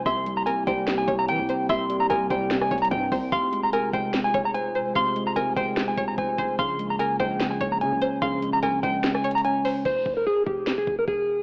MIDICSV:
0, 0, Header, 1, 7, 480
1, 0, Start_track
1, 0, Key_signature, -4, "minor"
1, 0, Tempo, 408163
1, 67, Time_signature, 4, 2, 24, 8
1, 13438, End_track
2, 0, Start_track
2, 0, Title_t, "Clean electric guitar"
2, 0, Program_c, 0, 27
2, 67, Note_on_c, 0, 84, 119
2, 412, Note_off_c, 0, 84, 0
2, 434, Note_on_c, 0, 82, 93
2, 526, Note_off_c, 0, 82, 0
2, 540, Note_on_c, 0, 80, 90
2, 738, Note_off_c, 0, 80, 0
2, 788, Note_on_c, 0, 79, 80
2, 1133, Note_off_c, 0, 79, 0
2, 1150, Note_on_c, 0, 80, 83
2, 1347, Note_off_c, 0, 80, 0
2, 1394, Note_on_c, 0, 82, 82
2, 1486, Note_off_c, 0, 82, 0
2, 1511, Note_on_c, 0, 79, 95
2, 1960, Note_off_c, 0, 79, 0
2, 1992, Note_on_c, 0, 84, 119
2, 2335, Note_off_c, 0, 84, 0
2, 2350, Note_on_c, 0, 82, 87
2, 2444, Note_off_c, 0, 82, 0
2, 2465, Note_on_c, 0, 80, 91
2, 2661, Note_off_c, 0, 80, 0
2, 2711, Note_on_c, 0, 79, 78
2, 3055, Note_off_c, 0, 79, 0
2, 3075, Note_on_c, 0, 80, 87
2, 3270, Note_off_c, 0, 80, 0
2, 3315, Note_on_c, 0, 82, 80
2, 3407, Note_off_c, 0, 82, 0
2, 3425, Note_on_c, 0, 79, 93
2, 3877, Note_off_c, 0, 79, 0
2, 3907, Note_on_c, 0, 84, 126
2, 4253, Note_off_c, 0, 84, 0
2, 4275, Note_on_c, 0, 82, 86
2, 4366, Note_off_c, 0, 82, 0
2, 4389, Note_on_c, 0, 80, 92
2, 4584, Note_off_c, 0, 80, 0
2, 4628, Note_on_c, 0, 79, 80
2, 4973, Note_off_c, 0, 79, 0
2, 4992, Note_on_c, 0, 80, 78
2, 5188, Note_off_c, 0, 80, 0
2, 5238, Note_on_c, 0, 82, 85
2, 5329, Note_off_c, 0, 82, 0
2, 5345, Note_on_c, 0, 80, 97
2, 5797, Note_off_c, 0, 80, 0
2, 5833, Note_on_c, 0, 84, 111
2, 6176, Note_off_c, 0, 84, 0
2, 6196, Note_on_c, 0, 82, 83
2, 6287, Note_off_c, 0, 82, 0
2, 6304, Note_on_c, 0, 80, 97
2, 6501, Note_off_c, 0, 80, 0
2, 6546, Note_on_c, 0, 79, 84
2, 6892, Note_off_c, 0, 79, 0
2, 6916, Note_on_c, 0, 80, 79
2, 7111, Note_off_c, 0, 80, 0
2, 7148, Note_on_c, 0, 82, 72
2, 7243, Note_off_c, 0, 82, 0
2, 7270, Note_on_c, 0, 80, 90
2, 7720, Note_off_c, 0, 80, 0
2, 7747, Note_on_c, 0, 84, 120
2, 8093, Note_off_c, 0, 84, 0
2, 8118, Note_on_c, 0, 82, 78
2, 8209, Note_off_c, 0, 82, 0
2, 8224, Note_on_c, 0, 80, 92
2, 8421, Note_off_c, 0, 80, 0
2, 8465, Note_on_c, 0, 79, 81
2, 8812, Note_off_c, 0, 79, 0
2, 8828, Note_on_c, 0, 80, 71
2, 9026, Note_off_c, 0, 80, 0
2, 9080, Note_on_c, 0, 82, 77
2, 9169, Note_off_c, 0, 82, 0
2, 9188, Note_on_c, 0, 80, 95
2, 9639, Note_off_c, 0, 80, 0
2, 9667, Note_on_c, 0, 84, 120
2, 10012, Note_off_c, 0, 84, 0
2, 10035, Note_on_c, 0, 82, 88
2, 10127, Note_off_c, 0, 82, 0
2, 10147, Note_on_c, 0, 80, 93
2, 10342, Note_off_c, 0, 80, 0
2, 10384, Note_on_c, 0, 79, 83
2, 10731, Note_off_c, 0, 79, 0
2, 10757, Note_on_c, 0, 80, 75
2, 10952, Note_off_c, 0, 80, 0
2, 10996, Note_on_c, 0, 82, 77
2, 11087, Note_off_c, 0, 82, 0
2, 11107, Note_on_c, 0, 80, 87
2, 11558, Note_off_c, 0, 80, 0
2, 11590, Note_on_c, 0, 72, 122
2, 11934, Note_off_c, 0, 72, 0
2, 11957, Note_on_c, 0, 70, 89
2, 12048, Note_off_c, 0, 70, 0
2, 12072, Note_on_c, 0, 68, 92
2, 12266, Note_off_c, 0, 68, 0
2, 12304, Note_on_c, 0, 67, 82
2, 12651, Note_off_c, 0, 67, 0
2, 12676, Note_on_c, 0, 68, 76
2, 12871, Note_off_c, 0, 68, 0
2, 12922, Note_on_c, 0, 70, 79
2, 13011, Note_off_c, 0, 70, 0
2, 13029, Note_on_c, 0, 68, 90
2, 13438, Note_off_c, 0, 68, 0
2, 13438, End_track
3, 0, Start_track
3, 0, Title_t, "Synth pluck"
3, 0, Program_c, 1, 84
3, 70, Note_on_c, 1, 76, 110
3, 520, Note_off_c, 1, 76, 0
3, 545, Note_on_c, 1, 70, 88
3, 774, Note_off_c, 1, 70, 0
3, 790, Note_on_c, 1, 72, 79
3, 1240, Note_off_c, 1, 72, 0
3, 1263, Note_on_c, 1, 73, 92
3, 1717, Note_off_c, 1, 73, 0
3, 1754, Note_on_c, 1, 72, 80
3, 1979, Note_off_c, 1, 72, 0
3, 1989, Note_on_c, 1, 76, 112
3, 2440, Note_off_c, 1, 76, 0
3, 2467, Note_on_c, 1, 70, 97
3, 2695, Note_off_c, 1, 70, 0
3, 2710, Note_on_c, 1, 72, 76
3, 3160, Note_off_c, 1, 72, 0
3, 3189, Note_on_c, 1, 73, 89
3, 3639, Note_off_c, 1, 73, 0
3, 3667, Note_on_c, 1, 72, 84
3, 3896, Note_off_c, 1, 72, 0
3, 3907, Note_on_c, 1, 77, 111
3, 4359, Note_off_c, 1, 77, 0
3, 4389, Note_on_c, 1, 70, 92
3, 4616, Note_off_c, 1, 70, 0
3, 4628, Note_on_c, 1, 72, 76
3, 5079, Note_off_c, 1, 72, 0
3, 5106, Note_on_c, 1, 73, 90
3, 5558, Note_off_c, 1, 73, 0
3, 5589, Note_on_c, 1, 72, 86
3, 5816, Note_off_c, 1, 72, 0
3, 5825, Note_on_c, 1, 77, 108
3, 6277, Note_off_c, 1, 77, 0
3, 6306, Note_on_c, 1, 70, 82
3, 6535, Note_off_c, 1, 70, 0
3, 6550, Note_on_c, 1, 72, 78
3, 7000, Note_off_c, 1, 72, 0
3, 7028, Note_on_c, 1, 73, 89
3, 7479, Note_off_c, 1, 73, 0
3, 7505, Note_on_c, 1, 72, 88
3, 7734, Note_off_c, 1, 72, 0
3, 7746, Note_on_c, 1, 77, 94
3, 8198, Note_off_c, 1, 77, 0
3, 8230, Note_on_c, 1, 70, 86
3, 8457, Note_off_c, 1, 70, 0
3, 8464, Note_on_c, 1, 72, 86
3, 8917, Note_off_c, 1, 72, 0
3, 8945, Note_on_c, 1, 73, 83
3, 9398, Note_off_c, 1, 73, 0
3, 9427, Note_on_c, 1, 72, 96
3, 9655, Note_off_c, 1, 72, 0
3, 9666, Note_on_c, 1, 77, 109
3, 10118, Note_off_c, 1, 77, 0
3, 10146, Note_on_c, 1, 70, 102
3, 10375, Note_off_c, 1, 70, 0
3, 10393, Note_on_c, 1, 72, 74
3, 10842, Note_off_c, 1, 72, 0
3, 10866, Note_on_c, 1, 73, 90
3, 11318, Note_off_c, 1, 73, 0
3, 11347, Note_on_c, 1, 72, 79
3, 11575, Note_off_c, 1, 72, 0
3, 13438, End_track
4, 0, Start_track
4, 0, Title_t, "Analog synth pad"
4, 0, Program_c, 2, 89
4, 67, Note_on_c, 2, 48, 83
4, 67, Note_on_c, 2, 58, 76
4, 67, Note_on_c, 2, 64, 76
4, 67, Note_on_c, 2, 67, 89
4, 3869, Note_off_c, 2, 58, 0
4, 3869, Note_off_c, 2, 64, 0
4, 3869, Note_off_c, 2, 67, 0
4, 3907, Note_on_c, 2, 65, 75
4, 3907, Note_on_c, 2, 68, 89
4, 3908, Note_on_c, 2, 56, 77
4, 7700, Note_off_c, 2, 48, 0
4, 7709, Note_off_c, 2, 56, 0
4, 7747, Note_on_c, 2, 58, 76
4, 7748, Note_on_c, 2, 49, 83
4, 11540, Note_off_c, 2, 65, 0
4, 11541, Note_off_c, 2, 68, 0
4, 11549, Note_off_c, 2, 49, 0
4, 11549, Note_off_c, 2, 58, 0
4, 13438, End_track
5, 0, Start_track
5, 0, Title_t, "Tine electric piano"
5, 0, Program_c, 3, 4
5, 0, Control_c, 3, 64, 127
5, 67, Note_on_c, 3, 48, 83
5, 83, Control_c, 3, 64, 0
5, 311, Note_on_c, 3, 55, 78
5, 320, Control_c, 3, 64, 127
5, 532, Note_off_c, 3, 48, 0
5, 546, Note_on_c, 3, 48, 81
5, 776, Note_off_c, 3, 55, 0
5, 790, Note_on_c, 3, 55, 91
5, 1012, Note_off_c, 3, 48, 0
5, 1026, Note_on_c, 3, 48, 77
5, 1512, Note_on_c, 3, 60, 99
5, 1737, Note_off_c, 3, 60, 0
5, 1751, Note_on_c, 3, 60, 84
5, 1973, Note_off_c, 3, 48, 0
5, 1987, Note_on_c, 3, 48, 88
5, 1989, Note_off_c, 3, 55, 0
5, 2227, Note_on_c, 3, 55, 85
5, 2457, Note_off_c, 3, 48, 0
5, 2471, Note_on_c, 3, 48, 71
5, 2696, Note_off_c, 3, 55, 0
5, 2710, Note_on_c, 3, 55, 93
5, 2934, Note_off_c, 3, 48, 0
5, 2948, Note_on_c, 3, 48, 80
5, 2949, Note_off_c, 3, 60, 0
5, 3428, Note_on_c, 3, 60, 102
5, 3657, Note_off_c, 3, 60, 0
5, 3671, Note_on_c, 3, 60, 82
5, 3896, Note_off_c, 3, 48, 0
5, 3909, Note_off_c, 3, 55, 0
5, 3909, Note_off_c, 3, 60, 0
5, 3910, Note_on_c, 3, 48, 85
5, 3921, Control_c, 3, 64, 0
5, 4140, Control_c, 3, 64, 127
5, 4148, Note_on_c, 3, 56, 79
5, 4372, Note_off_c, 3, 48, 0
5, 4386, Note_on_c, 3, 48, 74
5, 4612, Note_off_c, 3, 56, 0
5, 4626, Note_on_c, 3, 56, 90
5, 4852, Note_off_c, 3, 48, 0
5, 4867, Note_on_c, 3, 48, 71
5, 5350, Note_on_c, 3, 72, 101
5, 5573, Note_off_c, 3, 72, 0
5, 5587, Note_on_c, 3, 72, 84
5, 5814, Note_off_c, 3, 48, 0
5, 5827, Note_off_c, 3, 56, 0
5, 5828, Note_on_c, 3, 48, 93
5, 6069, Note_on_c, 3, 56, 81
5, 6294, Note_off_c, 3, 48, 0
5, 6308, Note_on_c, 3, 48, 77
5, 6533, Note_off_c, 3, 56, 0
5, 6547, Note_on_c, 3, 56, 91
5, 6776, Note_off_c, 3, 48, 0
5, 6787, Note_off_c, 3, 72, 0
5, 6790, Note_on_c, 3, 48, 73
5, 7265, Note_on_c, 3, 72, 98
5, 7493, Note_off_c, 3, 72, 0
5, 7508, Note_on_c, 3, 72, 84
5, 7747, Note_off_c, 3, 56, 0
5, 7748, Note_off_c, 3, 72, 0
5, 7749, Note_off_c, 3, 48, 0
5, 7752, Note_on_c, 3, 49, 87
5, 7761, Control_c, 3, 64, 0
5, 7952, Control_c, 3, 64, 127
5, 7990, Note_on_c, 3, 56, 83
5, 8213, Note_off_c, 3, 49, 0
5, 8227, Note_on_c, 3, 49, 75
5, 8456, Note_off_c, 3, 56, 0
5, 8470, Note_on_c, 3, 56, 96
5, 8693, Note_off_c, 3, 49, 0
5, 8707, Note_on_c, 3, 49, 74
5, 9190, Note_on_c, 3, 61, 93
5, 9412, Note_off_c, 3, 61, 0
5, 9426, Note_on_c, 3, 61, 85
5, 9654, Note_off_c, 3, 49, 0
5, 9668, Note_on_c, 3, 49, 100
5, 9669, Note_off_c, 3, 56, 0
5, 9908, Note_on_c, 3, 56, 78
5, 10130, Note_off_c, 3, 49, 0
5, 10144, Note_on_c, 3, 49, 68
5, 10375, Note_off_c, 3, 56, 0
5, 10389, Note_on_c, 3, 56, 92
5, 10614, Note_off_c, 3, 49, 0
5, 10627, Note_off_c, 3, 61, 0
5, 10628, Note_on_c, 3, 49, 78
5, 11109, Note_on_c, 3, 61, 105
5, 11331, Note_off_c, 3, 61, 0
5, 11346, Note_on_c, 3, 61, 78
5, 11587, Note_off_c, 3, 61, 0
5, 11588, Note_off_c, 3, 49, 0
5, 11588, Note_off_c, 3, 56, 0
5, 11603, Control_c, 3, 64, 0
5, 11797, Control_c, 3, 64, 127
5, 13438, End_track
6, 0, Start_track
6, 0, Title_t, "808-style bass"
6, 0, Program_c, 4, 38
6, 68, Note_on_c, 4, 36, 112
6, 528, Note_off_c, 4, 36, 0
6, 788, Note_on_c, 4, 36, 107
6, 1248, Note_off_c, 4, 36, 0
6, 1268, Note_on_c, 4, 36, 107
6, 1508, Note_on_c, 4, 52, 95
6, 1525, Note_off_c, 4, 36, 0
6, 1635, Note_on_c, 4, 36, 102
6, 1653, Note_off_c, 4, 52, 0
6, 1742, Note_off_c, 4, 36, 0
6, 1988, Note_on_c, 4, 36, 113
6, 2448, Note_off_c, 4, 36, 0
6, 2468, Note_on_c, 4, 36, 112
6, 2698, Note_off_c, 4, 36, 0
6, 2708, Note_on_c, 4, 36, 110
6, 3168, Note_off_c, 4, 36, 0
6, 3188, Note_on_c, 4, 36, 105
6, 3418, Note_off_c, 4, 36, 0
6, 3428, Note_on_c, 4, 43, 104
6, 3658, Note_off_c, 4, 43, 0
6, 3668, Note_on_c, 4, 36, 108
6, 3898, Note_off_c, 4, 36, 0
6, 3908, Note_on_c, 4, 29, 114
6, 4599, Note_off_c, 4, 29, 0
6, 4628, Note_on_c, 4, 29, 109
6, 5088, Note_off_c, 4, 29, 0
6, 5108, Note_on_c, 4, 29, 108
6, 5588, Note_on_c, 4, 28, 102
6, 5605, Note_off_c, 4, 29, 0
6, 5715, Note_on_c, 4, 29, 101
6, 5733, Note_off_c, 4, 28, 0
6, 5822, Note_off_c, 4, 29, 0
6, 5827, Note_on_c, 4, 29, 109
6, 6058, Note_off_c, 4, 29, 0
6, 6308, Note_on_c, 4, 29, 106
6, 6538, Note_off_c, 4, 29, 0
6, 6547, Note_on_c, 4, 29, 106
6, 7008, Note_off_c, 4, 29, 0
6, 7028, Note_on_c, 4, 28, 104
6, 7258, Note_off_c, 4, 28, 0
6, 7267, Note_on_c, 4, 29, 104
6, 7498, Note_off_c, 4, 29, 0
6, 7508, Note_on_c, 4, 29, 110
6, 7738, Note_off_c, 4, 29, 0
6, 7747, Note_on_c, 4, 34, 112
6, 8208, Note_off_c, 4, 34, 0
6, 8467, Note_on_c, 4, 34, 106
6, 8928, Note_off_c, 4, 34, 0
6, 8947, Note_on_c, 4, 34, 105
6, 9187, Note_on_c, 4, 49, 97
6, 9205, Note_off_c, 4, 34, 0
6, 9315, Note_on_c, 4, 34, 97
6, 9332, Note_off_c, 4, 49, 0
6, 9422, Note_off_c, 4, 34, 0
6, 9667, Note_on_c, 4, 34, 110
6, 10128, Note_off_c, 4, 34, 0
6, 10148, Note_on_c, 4, 34, 110
6, 10378, Note_off_c, 4, 34, 0
6, 10387, Note_on_c, 4, 34, 108
6, 10618, Note_off_c, 4, 34, 0
6, 11587, Note_on_c, 4, 29, 107
6, 11818, Note_off_c, 4, 29, 0
6, 11829, Note_on_c, 4, 29, 100
6, 12059, Note_off_c, 4, 29, 0
6, 12307, Note_on_c, 4, 29, 101
6, 12768, Note_off_c, 4, 29, 0
6, 12788, Note_on_c, 4, 29, 97
6, 13018, Note_off_c, 4, 29, 0
6, 13028, Note_on_c, 4, 28, 100
6, 13438, Note_off_c, 4, 28, 0
6, 13438, End_track
7, 0, Start_track
7, 0, Title_t, "Drums"
7, 68, Note_on_c, 9, 36, 120
7, 68, Note_on_c, 9, 42, 77
7, 185, Note_off_c, 9, 36, 0
7, 185, Note_off_c, 9, 42, 0
7, 309, Note_on_c, 9, 42, 76
7, 426, Note_off_c, 9, 42, 0
7, 548, Note_on_c, 9, 42, 82
7, 665, Note_off_c, 9, 42, 0
7, 788, Note_on_c, 9, 36, 91
7, 789, Note_on_c, 9, 42, 74
7, 905, Note_off_c, 9, 36, 0
7, 906, Note_off_c, 9, 42, 0
7, 1027, Note_on_c, 9, 42, 78
7, 1028, Note_on_c, 9, 38, 122
7, 1038, Note_on_c, 9, 39, 96
7, 1145, Note_off_c, 9, 42, 0
7, 1146, Note_off_c, 9, 38, 0
7, 1156, Note_off_c, 9, 39, 0
7, 1268, Note_on_c, 9, 36, 98
7, 1270, Note_on_c, 9, 42, 82
7, 1385, Note_off_c, 9, 36, 0
7, 1387, Note_off_c, 9, 42, 0
7, 1507, Note_on_c, 9, 42, 69
7, 1625, Note_off_c, 9, 42, 0
7, 1748, Note_on_c, 9, 42, 75
7, 1865, Note_off_c, 9, 42, 0
7, 1988, Note_on_c, 9, 36, 120
7, 1988, Note_on_c, 9, 42, 77
7, 2105, Note_off_c, 9, 36, 0
7, 2105, Note_off_c, 9, 42, 0
7, 2229, Note_on_c, 9, 42, 77
7, 2346, Note_off_c, 9, 42, 0
7, 2467, Note_on_c, 9, 42, 87
7, 2585, Note_off_c, 9, 42, 0
7, 2708, Note_on_c, 9, 36, 91
7, 2708, Note_on_c, 9, 42, 76
7, 2825, Note_off_c, 9, 36, 0
7, 2826, Note_off_c, 9, 42, 0
7, 2947, Note_on_c, 9, 42, 77
7, 2948, Note_on_c, 9, 38, 124
7, 2958, Note_on_c, 9, 39, 94
7, 3065, Note_off_c, 9, 42, 0
7, 3066, Note_off_c, 9, 38, 0
7, 3074, Note_on_c, 9, 37, 91
7, 3076, Note_off_c, 9, 39, 0
7, 3188, Note_on_c, 9, 36, 99
7, 3188, Note_on_c, 9, 42, 50
7, 3192, Note_off_c, 9, 37, 0
7, 3268, Note_off_c, 9, 42, 0
7, 3268, Note_on_c, 9, 42, 68
7, 3305, Note_off_c, 9, 36, 0
7, 3348, Note_off_c, 9, 42, 0
7, 3348, Note_on_c, 9, 42, 83
7, 3427, Note_off_c, 9, 42, 0
7, 3427, Note_on_c, 9, 42, 69
7, 3428, Note_on_c, 9, 36, 92
7, 3545, Note_off_c, 9, 36, 0
7, 3545, Note_off_c, 9, 42, 0
7, 3667, Note_on_c, 9, 46, 80
7, 3668, Note_on_c, 9, 36, 94
7, 3785, Note_off_c, 9, 46, 0
7, 3786, Note_off_c, 9, 36, 0
7, 3908, Note_on_c, 9, 36, 127
7, 3908, Note_on_c, 9, 42, 78
7, 4025, Note_off_c, 9, 36, 0
7, 4025, Note_off_c, 9, 42, 0
7, 4149, Note_on_c, 9, 42, 75
7, 4266, Note_off_c, 9, 42, 0
7, 4388, Note_on_c, 9, 42, 83
7, 4505, Note_off_c, 9, 42, 0
7, 4628, Note_on_c, 9, 36, 91
7, 4629, Note_on_c, 9, 42, 77
7, 4745, Note_off_c, 9, 36, 0
7, 4746, Note_off_c, 9, 42, 0
7, 4867, Note_on_c, 9, 42, 82
7, 4868, Note_on_c, 9, 38, 117
7, 4878, Note_on_c, 9, 39, 95
7, 4985, Note_off_c, 9, 42, 0
7, 4986, Note_off_c, 9, 38, 0
7, 4996, Note_off_c, 9, 39, 0
7, 5108, Note_on_c, 9, 36, 100
7, 5109, Note_on_c, 9, 42, 83
7, 5225, Note_off_c, 9, 36, 0
7, 5227, Note_off_c, 9, 42, 0
7, 5347, Note_on_c, 9, 42, 69
7, 5465, Note_off_c, 9, 42, 0
7, 5587, Note_on_c, 9, 42, 72
7, 5705, Note_off_c, 9, 42, 0
7, 5827, Note_on_c, 9, 36, 127
7, 5827, Note_on_c, 9, 42, 74
7, 5945, Note_off_c, 9, 36, 0
7, 5945, Note_off_c, 9, 42, 0
7, 6069, Note_on_c, 9, 42, 74
7, 6186, Note_off_c, 9, 42, 0
7, 6307, Note_on_c, 9, 42, 88
7, 6425, Note_off_c, 9, 42, 0
7, 6547, Note_on_c, 9, 36, 95
7, 6548, Note_on_c, 9, 42, 74
7, 6665, Note_off_c, 9, 36, 0
7, 6666, Note_off_c, 9, 42, 0
7, 6787, Note_on_c, 9, 42, 75
7, 6788, Note_on_c, 9, 38, 120
7, 6798, Note_on_c, 9, 39, 99
7, 6905, Note_off_c, 9, 42, 0
7, 6906, Note_off_c, 9, 38, 0
7, 6916, Note_off_c, 9, 39, 0
7, 7027, Note_on_c, 9, 36, 102
7, 7029, Note_on_c, 9, 42, 84
7, 7145, Note_off_c, 9, 36, 0
7, 7147, Note_off_c, 9, 42, 0
7, 7267, Note_on_c, 9, 36, 94
7, 7267, Note_on_c, 9, 42, 70
7, 7384, Note_off_c, 9, 42, 0
7, 7385, Note_off_c, 9, 36, 0
7, 7507, Note_on_c, 9, 42, 75
7, 7508, Note_on_c, 9, 36, 92
7, 7625, Note_off_c, 9, 36, 0
7, 7625, Note_off_c, 9, 42, 0
7, 7747, Note_on_c, 9, 36, 125
7, 7747, Note_on_c, 9, 42, 79
7, 7865, Note_off_c, 9, 36, 0
7, 7865, Note_off_c, 9, 42, 0
7, 7988, Note_on_c, 9, 42, 77
7, 8106, Note_off_c, 9, 42, 0
7, 8227, Note_on_c, 9, 42, 85
7, 8345, Note_off_c, 9, 42, 0
7, 8467, Note_on_c, 9, 36, 92
7, 8468, Note_on_c, 9, 42, 77
7, 8585, Note_off_c, 9, 36, 0
7, 8586, Note_off_c, 9, 42, 0
7, 8707, Note_on_c, 9, 42, 78
7, 8708, Note_on_c, 9, 38, 123
7, 8718, Note_on_c, 9, 39, 94
7, 8825, Note_off_c, 9, 42, 0
7, 8826, Note_off_c, 9, 38, 0
7, 8836, Note_off_c, 9, 39, 0
7, 8948, Note_on_c, 9, 36, 98
7, 8949, Note_on_c, 9, 42, 82
7, 9065, Note_off_c, 9, 36, 0
7, 9067, Note_off_c, 9, 42, 0
7, 9187, Note_on_c, 9, 42, 68
7, 9305, Note_off_c, 9, 42, 0
7, 9428, Note_on_c, 9, 42, 77
7, 9545, Note_off_c, 9, 42, 0
7, 9668, Note_on_c, 9, 36, 124
7, 9668, Note_on_c, 9, 42, 77
7, 9785, Note_off_c, 9, 36, 0
7, 9785, Note_off_c, 9, 42, 0
7, 9909, Note_on_c, 9, 42, 76
7, 10026, Note_off_c, 9, 42, 0
7, 10147, Note_on_c, 9, 42, 83
7, 10265, Note_off_c, 9, 42, 0
7, 10388, Note_on_c, 9, 36, 96
7, 10388, Note_on_c, 9, 42, 74
7, 10505, Note_off_c, 9, 36, 0
7, 10506, Note_off_c, 9, 42, 0
7, 10627, Note_on_c, 9, 42, 79
7, 10628, Note_on_c, 9, 38, 123
7, 10638, Note_on_c, 9, 39, 101
7, 10745, Note_off_c, 9, 42, 0
7, 10746, Note_off_c, 9, 38, 0
7, 10754, Note_on_c, 9, 37, 94
7, 10756, Note_off_c, 9, 39, 0
7, 10867, Note_on_c, 9, 42, 50
7, 10872, Note_off_c, 9, 37, 0
7, 10947, Note_off_c, 9, 42, 0
7, 10947, Note_on_c, 9, 42, 66
7, 11027, Note_off_c, 9, 42, 0
7, 11027, Note_on_c, 9, 42, 82
7, 11107, Note_off_c, 9, 42, 0
7, 11107, Note_on_c, 9, 42, 72
7, 11224, Note_off_c, 9, 42, 0
7, 11347, Note_on_c, 9, 46, 81
7, 11464, Note_off_c, 9, 46, 0
7, 11587, Note_on_c, 9, 36, 122
7, 11587, Note_on_c, 9, 49, 96
7, 11705, Note_off_c, 9, 36, 0
7, 11705, Note_off_c, 9, 49, 0
7, 11828, Note_on_c, 9, 36, 102
7, 11946, Note_off_c, 9, 36, 0
7, 12307, Note_on_c, 9, 36, 90
7, 12425, Note_off_c, 9, 36, 0
7, 12548, Note_on_c, 9, 38, 115
7, 12558, Note_on_c, 9, 39, 91
7, 12666, Note_off_c, 9, 38, 0
7, 12676, Note_off_c, 9, 39, 0
7, 12788, Note_on_c, 9, 36, 94
7, 12905, Note_off_c, 9, 36, 0
7, 13028, Note_on_c, 9, 36, 90
7, 13145, Note_off_c, 9, 36, 0
7, 13438, End_track
0, 0, End_of_file